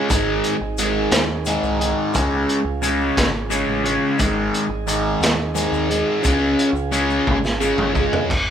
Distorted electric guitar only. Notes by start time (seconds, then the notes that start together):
Already playing: G#3
0.09 G#2 D#3 G#3
0.79 G#2 D#3 G#3
1.47 G#2 D#3 G#3
1.79 G#2 D#3 G#3
2.14 C#3 G#3 C#4
2.82 C#3 G#3 C#4
3.50 C#3 G#3 C#4
3.84 C#3 G#3 C#4
4.19 G#2 D#3 G#3
4.87 G#2 D#3 G#3
5.55 G#2 D#3 G#3
5.90 G#2 D#3 G#3
6.22 C#3 G#3 C#4
6.91 C#3 G#3 C#4
7.60 C#3 G#3 C#4
7.93 C#3 G#3 C#4